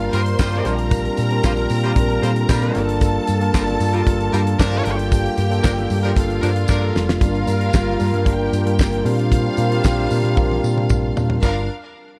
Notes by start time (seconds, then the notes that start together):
Already playing: G3 A#3 D4 F4 A#4
0.00 closed hi-hat
0.12 G2 G3 A#3 D4 F4 A#4 C5 C6, closed hi-hat, tambourine
0.26 closed hi-hat
0.39 G2 G3 F4 C5, kick, snare, clap, tambourine
0.51 G3 A#3 D4 F4 C5, closed hi-hat
0.64 A#1 G3 A#3 C4 D4 F4 G4 A#4 A#5, snare, closed hi-hat, tambourine
0.78 closed hi-hat
0.91 kick, closed hi-hat, tambourine
1.05 closed hi-hat
1.17 A#2, closed hi-hat, tambourine
1.30 G3 C4 D4 F4 A#4, closed hi-hat
1.43 A#1 G3 F4 C5, kick, snare, clap, tambourine
1.56 G3 C4 D4 F4 A#4, closed hi-hat
1.70 A#2, open hi-hat, tambourine
1.83 G3 F4 C5, closed hi-hat
1.95 A#1 G3 C4 D4 F4 A#4, kick, closed hi-hat
2.10 closed hi-hat
2.21 A#2 G3 C4 D4 F4 A4 C5, closed hi-hat, tambourine
2.36 closed hi-hat
2.49 A#2 G3 F4 A#4, kick, snare, clap, tambourine
2.61 G3 C4 D4 F4 A#4, closed hi-hat
2.74 G1 G3 A#3 D4 F4 A4 A#4 A5, snare, closed hi-hat
2.89 closed hi-hat
3.01 kick, closed hi-hat, tambourine
3.27 G2, closed hi-hat, tambourine
3.41 G3 A#3 D4 F4 A#4, closed hi-hat
3.54 G1 G3 F4 A#4, kick, snare, clap, tambourine
3.66 G3 A#3 D4 F4 A#4, closed hi-hat
3.80 G2, open hi-hat, tambourine
3.93 G3 F4 A#4, closed hi-hat
4.06 G1 G3 A#3 D4 F4 A#4, kick, closed hi-hat, tambourine
4.21 closed hi-hat
4.32 G2 G3 A#3 D4 F4 A#4, closed hi-hat, tambourine
4.47 closed hi-hat
4.59 G2 F3 D4 A#4, kick, snare, clap, tambourine
4.71 G3 A#3 D4 F4 G4, closed hi-hat
4.84 G1 G3 A#3 D4 F4 G4 A4 G5, snare, closed hi-hat, tambourine
4.99 closed hi-hat
5.12 kick, closed hi-hat, tambourine
5.26 closed hi-hat
5.37 G2, closed hi-hat, tambourine
5.50 G3 A#3 D4 F4 A4, closed hi-hat
5.64 G1 F3 D4 A#4, kick, snare, clap, tambourine
5.77 G3 A#3 D4 F4 A4, closed hi-hat
5.90 G2, open hi-hat, tambourine
6.03 F3 D4 A#4, closed hi-hat
6.16 G1 G3 A#3 D4 F4 A4 F5, kick, closed hi-hat, tambourine
6.30 closed hi-hat
6.42 G2 F3 G3 A#3 D4 F4 A4 A#4, closed hi-hat, tambourine
6.56 closed hi-hat
6.68 G2 F3 D4 A#4, kick, snare, tambourine
6.81 G3 A#3 D4 F4 A4
6.95 F1, snare, tambourine
7.09 snare
7.19 G1 G3 A#3 D4 F4 A#4 F5, kick, closed hi-hat, tambourine
7.35 closed hi-hat
7.46 G2 G3 A#3 D4 F4 A#4, closed hi-hat, tambourine
7.61 closed hi-hat
7.73 G1, kick, snare, clap, tambourine
7.99 G2 G3 A#3 D4 F4 A#4, open hi-hat, tambourine
8.14 G2, closed hi-hat
8.25 G1 G3 A#3 D4 F4 G4 A#4 G5, kick, closed hi-hat
8.53 G2, closed hi-hat, tambourine
8.65 G2 G3 A#3 D4 F4 A#4, closed hi-hat
8.79 G1, kick, snare, clap, tambourine
8.93 closed hi-hat
9.04 A#2 G3 A#3 C4 D4 F4 G4 A#4 C5 F5, open hi-hat, tambourine
9.19 closed hi-hat
9.32 kick, closed hi-hat, tambourine
9.57 A#2 G3 C4 D4 F4 A#4, closed hi-hat, tambourine
9.72 closed hi-hat
9.84 A#1, kick, snare, clap, tambourine
10.10 A#2 G3 C4 D4 F4 A#4, open hi-hat, tambourine
10.24 A#2, closed hi-hat
10.36 A#1 G3 C4 D4 F4 A#4, kick, high tom, tambourine
10.51 high tom
10.64 A#2, tambourine
10.76 A#2 G3 C4 D4 F4 A#4, mid tom
10.89 A#1, kick, mid tom, tambourine
11.16 A#2 G3 C4 D4 F4 A#4, floor tom, tambourine
11.30 floor tom
11.41 G1 G3 D4 F4 A#4 F5, kick, crash, tambourine